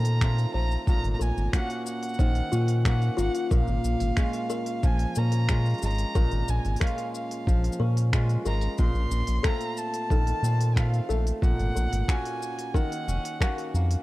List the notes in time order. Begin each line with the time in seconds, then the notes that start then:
Already playing: A#2 D#3 A3 C4 F4 A#5
0.05 open hi-hat, shaker
0.21 A3 C4 F4, finger snap, kick, shaker
0.38 open hi-hat, shaker
0.54 A#1 A3 C5 A#5
0.71 shaker
0.87 A#1 A#2 A#5, kick, shaker
1.04 G#1, open hi-hat, shaker
1.14 A#5
1.19 A#1 A#4 G#5, shaker
1.37 G#1, shaker
1.53 A#3 C#4 F#4 F#5, finger snap, kick, open hi-hat, shaker
1.70 open hi-hat, shaker
1.86 F#5, shaker
2.03 open hi-hat, shaker
2.09 shaker
2.14 shaker
2.19 A#1 D#3 C5, kick, shaker
2.35 open hi-hat, shaker
2.52 A#2 C#4 F4, shaker
2.68 open hi-hat, shaker
2.85 A#3 C#4 A#4 F#5, finger snap, kick, shaker
3.02 open hi-hat, shaker
3.17 G#1 A#3 F4 F#5, shaker
3.35 open hi-hat, shaker
3.51 A#1 A#2 A#4 F5, kick, shaker
3.68 G#1, shaker
3.84 A#1, shaker
4.00 G#1, open hi-hat, shaker
4.17 G#3 C#4 F4, finger snap, kick, shaker
4.33 open hi-hat, shaker
4.50 A#4, shaker
4.66 open hi-hat, shaker
4.83 A#1 F3 G#5, kick, shaker
4.99 open hi-hat, shaker
5.15 A#2 C#4 A#4 A#5, shaker
5.32 open hi-hat, shaker
5.49 G#3 C#4 F4, finger snap, kick, shaker
5.66 open hi-hat, shaker
5.69 open hi-hat
5.74 open hi-hat
5.78 open hi-hat
5.82 G#1 G#3 A#5, open hi-hat, shaker
5.86 open hi-hat
5.90 open hi-hat
5.95 open hi-hat
5.98 open hi-hat, shaker
6.15 A#1 A#2 A#4, kick, shaker
6.31 G#1, open hi-hat, shaker
6.48 A#1 G#5, shaker
6.65 G#1, open hi-hat, shaker
6.76 open hi-hat
6.80 G#3 C#4 F4 A#4 F5, finger snap, kick, shaker
6.87 open hi-hat
6.98 open hi-hat, shaker
7.15 F5, shaker
7.31 open hi-hat, shaker
7.47 A#1 F3, kick, shaker
7.64 open hi-hat, shaker
7.72 shaker
7.80 A#2 C#4 A#4
7.97 open hi-hat, shaker
8.13 G#3 C#4 F4, finger snap, kick, shaker
8.29 open hi-hat, shaker
8.45 G#1 G#3 A#4 A#5, shaker
8.61 open hi-hat, shaker
8.78 A#1 A#2 C6, kick, shaker
8.95 A#1, shaker
9.11 A#1, shaker
9.27 A#1, open hi-hat, shaker
9.43 A3 C4 F4 A4 A#5, finger snap, kick, shaker
9.61 open hi-hat, shaker
9.77 A5, shaker
9.94 open hi-hat, shaker
10.10 A#1 D#3 A4, kick, shaker
10.27 open hi-hat, shaker
10.43 A#2 C4, shaker
10.61 open hi-hat, shaker
10.76 A3 C4 F4 F5, finger snap, kick, shaker
10.94 open hi-hat, shaker
11.09 A#1 A3 A4 F5, shaker
11.27 open hi-hat, shaker
11.42 A#1 A#2 F#5, kick, shaker
11.59 G#1, open hi-hat, shaker
11.76 A#1 A#4, shaker
11.93 G#1, open hi-hat, shaker
12.08 A#3 C#4 F#4 G#5, finger snap, kick, shaker
12.25 open hi-hat, shaker
12.42 shaker
12.59 open hi-hat, shaker
12.74 D#3 A#4 F#5, kick, shaker
12.92 open hi-hat, shaker
13.08 F1 C#4, shaker
13.25 open hi-hat, shaker
13.40 A#3 C#4 F#4 A#4, finger snap, kick, shaker
13.58 open hi-hat, shaker
13.74 F2 A#3, shaker
13.91 open hi-hat, shaker